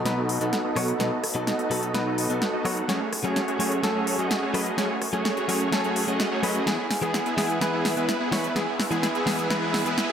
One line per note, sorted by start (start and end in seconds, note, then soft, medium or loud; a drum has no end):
0.00 6.63 A4 medium
0.00 2.85 D#5 medium
0.00 6.63 F#5 medium
0.00 2.85 B5 medium
0.05 0.15 B1 loud
0.05 0.38 B2 medium
0.05 0.38 F#3 medium
0.05 0.14 B3 medium
0.05 0.38 B3 medium
0.05 0.15 D#4 medium
0.05 0.38 D#4 medium
0.05 0.14 F#4 medium
0.05 0.15 A4 medium
0.05 0.38 B4 loud
0.05 0.15 D#5 medium
0.05 snare soft
0.05 closed hi-hat medium
0.17 0.39 B1 medium
0.17 0.37 B3 medium
0.17 0.37 D#4 medium
0.17 0.37 F#4 medium
0.17 0.37 A4 medium
0.17 0.37 D#5 loud
0.29 open hi-hat loud
0.40 0.62 B1 medium
0.40 0.51 B2 medium
0.40 0.51 F#3 medium
0.40 0.51 B3 medium
0.40 0.62 B3 medium
0.40 0.62 D#4 medium
0.40 0.51 D#4 medium
0.40 0.62 F#4 medium
0.40 0.62 A4 medium
0.40 0.51 A4 medium
0.40 0.62 F#5 medium
0.40 closed hi-hat medium
0.53 snare soft
0.53 closed hi-hat medium
0.65 0.74 B1 loud
0.65 0.74 B3 medium
0.65 0.74 D#4 medium
0.65 0.74 F#4 medium
0.65 0.74 A4 medium
0.65 0.74 D#5 loud
0.76 0.98 B1 loud
0.76 0.92 B2 medium
0.76 0.92 F#3 medium
0.76 0.96 B3 medium
0.76 0.92 B3 medium
0.76 0.96 D#4 medium
0.76 0.92 D#4 medium
0.76 0.96 F#4 medium
0.76 0.96 A4 medium
0.76 0.92 C#5 medium
0.76 0.96 F#5 medium
0.76 cross-stick medium
0.76 open hi-hat loud
0.88 closed hi-hat medium
0.99 1.33 B1 loud
0.99 1.10 B2 medium
0.99 1.10 F#3 medium
0.99 1.10 B3 medium
0.99 1.18 B3 medium
0.99 1.18 D#4 medium
0.99 1.10 D#4 medium
0.99 1.18 F#4 medium
0.99 1.18 A4 medium
0.99 1.10 A4 medium
0.99 1.18 D#5 medium
0.99 snare medium
0.99 closed hi-hat medium
1.24 cross-stick medium
1.24 open hi-hat loud
1.35 1.57 B1 loud
1.35 1.51 B2 medium
1.35 1.51 F#3 medium
1.35 1.51 B3 medium
1.35 1.56 B3 medium
1.35 1.56 D#4 medium
1.35 1.51 D#4 medium
1.35 1.56 F#4 medium
1.35 1.56 A4 medium
1.35 1.51 A4 medium
1.35 1.56 D#5 medium
1.47 snare medium
1.47 closed hi-hat medium
1.59 1.69 B1 medium
1.59 1.68 B3 medium
1.59 1.68 D#4 medium
1.59 1.68 F#4 medium
1.59 1.68 A4 medium
1.59 1.68 D#5 loud
1.59 closed hi-hat soft
1.70 1.92 B1 medium
1.70 1.91 B2 medium
1.70 1.92 F#3 medium
1.70 1.92 B3 medium
1.70 1.92 B3 loud
1.70 1.92 D#4 medium
1.70 1.92 F#4 medium
1.70 1.92 A4 medium
1.70 1.92 D#5 loud
1.70 open hi-hat loud
1.83 closed hi-hat medium
1.94 2.04 B1 loud
1.94 2.27 B2 medium
1.94 2.27 F#3 medium
1.94 2.03 B3 medium
1.94 2.27 B3 medium
1.94 2.03 D#4 medium
1.94 2.27 D#4 medium
1.94 2.03 F#4 medium
1.94 2.03 A4 medium
1.94 2.27 B4 loud
1.94 2.03 D#5 medium
1.94 snare medium
1.94 closed hi-hat medium
2.06 2.28 B1 medium
2.06 2.26 B3 medium
2.06 2.26 D#4 medium
2.06 2.26 F#4 medium
2.06 2.26 A4 medium
2.06 2.26 D#5 loud
2.18 open hi-hat loud
2.29 2.51 B1 medium
2.29 2.39 B2 medium
2.29 2.40 F#3 medium
2.29 2.40 B3 medium
2.29 2.51 B3 medium
2.29 2.51 D#4 medium
2.29 2.40 D#4 medium
2.29 2.51 F#4 medium
2.29 2.51 A4 medium
2.29 2.40 A4 medium
2.29 2.51 F#5 medium
2.29 closed hi-hat medium
2.42 snare medium
2.42 closed hi-hat medium
2.53 2.63 B1 medium
2.53 2.62 B3 medium
2.53 2.62 D#4 medium
2.53 2.63 F#4 medium
2.53 2.62 A4 medium
2.53 2.62 D#5 loud
2.65 2.87 B1 loud
2.65 2.81 F#3 medium
2.65 2.85 B3 medium
2.65 2.81 B3 medium
2.65 2.85 D#4 medium
2.65 2.81 D#4 medium
2.65 2.85 F#4 medium
2.65 2.85 A4 medium
2.65 2.81 C#5 medium
2.65 2.85 F#5 medium
2.65 cross-stick medium
2.65 open hi-hat loud
2.77 closed hi-hat soft
2.88 3.22 F#1 medium
2.88 2.99 F#3 medium
2.88 3.07 A3 medium
2.88 2.99 A3 medium
2.88 3.07 C#4 medium
2.88 2.99 C#4 medium
2.88 3.07 F#4 medium
2.88 3.07 G#4 medium
2.88 2.99 G#4 medium
2.88 3.07 C#5 medium
2.88 10.12 G#5 medium
2.88 6.63 C#6 medium
2.88 snare medium
2.88 closed hi-hat medium
3.13 cross-stick medium
3.13 open hi-hat loud
3.24 3.46 F#1 loud
3.24 3.40 F#3 medium
3.24 3.45 A3 medium
3.24 3.40 A3 medium
3.24 3.45 C#4 medium
3.24 3.40 C#4 medium
3.24 3.45 F#4 medium
3.24 3.45 G#4 medium
3.24 3.40 G#4 medium
3.24 3.45 C#5 loud
3.24 closed hi-hat soft
3.36 snare medium
3.36 closed hi-hat medium
3.48 3.57 F#1 medium
3.48 3.57 A3 medium
3.48 3.57 C#4 medium
3.48 3.57 F#4 medium
3.48 3.57 G#4 medium
3.48 3.57 C#5 loud
3.48 closed hi-hat soft
3.59 3.81 F#1 medium
3.59 3.80 F#3 medium
3.59 3.81 A3 medium
3.59 3.81 C#4 medium
3.59 3.81 F#4 medium
3.59 3.81 G#4 medium
3.59 3.81 C#5 loud
3.59 open hi-hat loud
3.72 closed hi-hat soft
3.83 3.93 F#1 loud
3.83 4.16 F#3 medium
3.83 3.92 A3 medium
3.83 4.16 A3 medium
3.83 3.92 C#4 medium
3.83 4.16 C#4 medium
3.83 3.92 F#4 medium
3.83 3.92 G#4 medium
3.83 4.16 A4 loud
3.83 3.92 C#5 medium
3.83 snare medium
3.83 closed hi-hat medium
3.95 4.17 F#1 medium
3.95 4.15 A3 loud
3.95 4.15 C#4 medium
3.95 4.15 F#4 medium
3.95 4.15 G#4 medium
3.95 4.15 C#5 loud
4.07 open hi-hat loud
4.18 4.40 F#1 medium
4.18 4.28 F#3 medium
4.18 4.29 A3 medium
4.18 4.40 A3 medium
4.18 4.40 C#4 medium
4.18 4.29 C#4 medium
4.18 4.40 F#4 medium
4.18 4.40 G#4 medium
4.18 4.29 G#4 medium
4.18 4.40 D#5 medium
4.18 closed hi-hat medium
4.31 snare medium
4.31 closed hi-hat medium
4.42 4.52 F#1 medium
4.42 4.52 A3 medium
4.42 4.52 C#4 medium
4.42 4.52 F#4 medium
4.42 4.52 G#4 medium
4.42 4.51 C#5 loud
4.54 4.76 F#1 loud
4.54 4.70 F#3 medium
4.54 4.70 A3 medium
4.54 4.74 A3 medium
4.54 4.74 C#4 medium
4.54 4.70 C#4 medium
4.54 4.74 F#4 medium
4.54 4.74 G#4 medium
4.54 4.70 B4 medium
4.54 4.74 D#5 medium
4.54 cross-stick medium
4.54 open hi-hat loud
4.66 closed hi-hat soft
4.77 5.11 F#1 loud
4.77 4.88 F#3 medium
4.77 4.96 A3 medium
4.77 4.88 A3 medium
4.77 4.96 C#4 medium
4.77 4.88 C#4 medium
4.77 4.96 F#4 medium
4.77 4.96 G#4 medium
4.77 4.88 G#4 medium
4.77 4.96 C#5 medium
4.77 snare medium
4.77 closed hi-hat medium
5.02 cross-stick medium
5.02 open hi-hat loud
5.13 5.35 F#1 medium
5.13 5.29 F#3 medium
5.13 5.29 A3 medium
5.13 5.34 A3 medium
5.13 5.34 C#4 medium
5.13 5.29 C#4 medium
5.13 5.34 F#4 medium
5.13 5.34 G#4 medium
5.13 5.29 G#4 loud
5.13 5.34 C#5 medium
5.13 closed hi-hat soft
5.25 snare medium
5.25 closed hi-hat medium
5.37 5.46 F#1 medium
5.37 5.46 A3 medium
5.37 5.46 C#4 medium
5.37 5.46 F#4 medium
5.37 5.46 G#4 medium
5.37 5.46 C#5 loud
5.37 closed hi-hat soft
5.48 5.69 F#3 medium
5.48 5.69 A3 medium
5.48 5.70 A3 medium
5.48 5.70 C#4 medium
5.48 5.70 F#4 medium
5.48 5.70 G#4 medium
5.48 5.70 C#5 loud
5.48 open hi-hat loud
5.61 closed hi-hat soft
5.72 5.82 F#1 loud
5.72 6.05 F#3 medium
5.72 5.81 A3 medium
5.72 6.05 A3 medium
5.72 5.81 C#4 medium
5.72 6.05 C#4 medium
5.72 5.81 F#4 medium
5.72 5.81 G#4 medium
5.72 6.05 A4 loud
5.72 5.81 C#5 medium
5.72 snare medium
5.72 closed hi-hat medium
5.84 6.06 F#1 medium
5.84 6.04 A3 loud
5.84 6.04 C#4 medium
5.84 6.04 F#4 medium
5.84 6.04 G#4 medium
5.84 6.04 C#5 loud
5.84 closed hi-hat soft
5.96 open hi-hat loud
6.07 6.29 F#1 medium
6.07 6.17 F#3 medium
6.07 6.29 A3 medium
6.07 6.18 A3 medium
6.07 6.29 C#4 medium
6.07 6.18 C#4 medium
6.07 6.29 F#4 medium
6.07 6.29 G#4 medium
6.07 6.18 G#4 medium
6.07 6.29 D#5 medium
6.07 closed hi-hat medium
6.20 snare medium
6.20 closed hi-hat medium
6.31 6.41 F#2 medium
6.31 6.40 A3 medium
6.31 6.41 C#4 medium
6.31 6.40 F#4 medium
6.31 6.41 G#4 medium
6.31 6.41 C#5 loud
6.43 6.65 F#2 loud
6.43 6.59 F#3 medium
6.43 6.59 A3 medium
6.43 6.63 A3 medium
6.43 6.63 C#4 medium
6.43 6.59 C#4 medium
6.43 6.63 F#4 medium
6.43 6.63 G#4 medium
6.43 6.59 B4 medium
6.43 6.63 D#5 medium
6.43 cross-stick medium
6.43 open hi-hat loud
6.55 closed hi-hat soft
6.66 7.00 E1 loud
6.66 6.76 E3 medium
6.66 6.77 G#3 medium
6.66 6.85 B3 medium
6.66 6.77 B3 medium
6.66 6.85 E4 medium
6.66 6.85 G#4 medium
6.66 6.77 G#4 medium
6.66 10.12 B4 medium
6.66 10.12 E5 medium
6.66 10.12 E6 medium
6.66 snare medium
6.66 closed hi-hat medium
6.66 riser medium
6.91 snare medium
6.91 open hi-hat loud
7.02 7.24 E1 loud
7.02 7.18 E3 medium
7.02 7.18 G#3 medium
7.02 7.18 B3 medium
7.02 7.23 B3 medium
7.02 7.23 E4 medium
7.02 7.23 G#4 loud
7.02 7.18 G#4 medium
7.02 closed hi-hat soft
7.14 snare medium
7.14 closed hi-hat medium
7.26 7.35 E1 medium
7.26 7.35 B3 medium
7.26 7.35 E4 medium
7.26 7.35 G#4 loud
7.26 closed hi-hat soft
7.37 7.59 E1 medium
7.37 7.58 E3 medium
7.37 7.58 G#3 medium
7.37 7.59 B3 loud
7.37 7.59 B3 medium
7.37 7.59 E4 medium
7.37 7.59 G#4 loud
7.37 7.59 G#4 medium
7.37 snare medium
7.37 open hi-hat loud
7.50 closed hi-hat soft
7.61 7.94 E3 loud
7.61 7.94 G#3 medium
7.61 7.70 B3 medium
7.61 7.94 B3 medium
7.61 7.70 E4 medium
7.61 7.70 G#4 loud
7.61 7.94 B4 loud
7.61 snare medium
7.61 closed hi-hat medium
7.73 7.93 B3 loud
7.73 7.93 E4 medium
7.73 7.93 G#4 loud
7.85 snare medium
7.85 open hi-hat loud
7.96 8.06 E3 medium
7.96 8.07 G#3 medium
7.96 8.07 B3 medium
7.96 8.18 B3 medium
7.96 8.18 E4 medium
7.96 8.07 G#4 medium
7.96 8.18 B4 medium
7.96 closed hi-hat medium
8.09 snare medium
8.09 closed hi-hat medium
8.20 8.29 B3 medium
8.20 8.29 E4 medium
8.20 8.29 G#4 loud
8.31 8.48 E3 medium
8.31 8.48 G#3 medium
8.31 8.52 B3 medium
8.31 8.48 B3 medium
8.31 8.52 E4 medium
8.31 8.52 B4 medium
8.31 8.48 C#5 medium
8.31 snare medium
8.31 open hi-hat loud
8.44 closed hi-hat soft
8.55 8.89 E1 medium
8.55 8.65 E3 medium
8.55 8.66 G#3 medium
8.55 8.74 B3 medium
8.55 8.66 B3 medium
8.55 8.74 E4 medium
8.55 8.74 G#4 medium
8.55 8.66 G#4 loud
8.55 snare medium
8.55 closed hi-hat medium
8.80 snare medium
8.80 open hi-hat loud
8.91 9.07 E3 medium
8.91 9.07 G#3 medium
8.91 9.12 B3 medium
8.91 9.07 B3 medium
8.91 9.12 E4 medium
8.91 9.12 G#4 loud
8.91 9.07 G#4 loud
8.91 closed hi-hat medium
9.03 snare medium
9.03 closed hi-hat medium
9.15 9.24 B3 medium
9.15 9.24 E4 medium
9.15 9.24 G#4 loud
9.15 closed hi-hat soft
9.26 9.47 E3 medium
9.26 9.47 G#3 medium
9.26 9.48 B3 medium
9.26 9.48 B3 loud
9.26 9.48 E4 medium
9.26 9.48 G#4 loud
9.26 9.48 G#4 medium
9.26 snare medium
9.26 open hi-hat loud
9.39 closed hi-hat medium
9.50 9.60 E1 loud
9.50 9.83 E3 loud
9.50 9.83 G#3 medium
9.50 9.59 B3 medium
9.50 9.83 B3 medium
9.50 9.59 E4 medium
9.50 9.59 G#4 loud
9.50 9.83 B4 loud
9.50 snare medium
9.50 closed hi-hat medium
9.62 9.82 B3 medium
9.62 9.82 E4 medium
9.62 9.82 G#4 loud
9.74 snare medium
9.74 open hi-hat loud
9.85 10.07 E1 medium
9.85 9.95 E3 medium
9.85 9.96 G#3 medium
9.85 10.07 B3 medium
9.85 9.96 B3 medium
9.85 10.07 E4 medium
9.85 9.96 G#4 medium
9.85 10.07 B4 medium
9.85 closed hi-hat medium
9.98 snare medium
9.98 closed hi-hat medium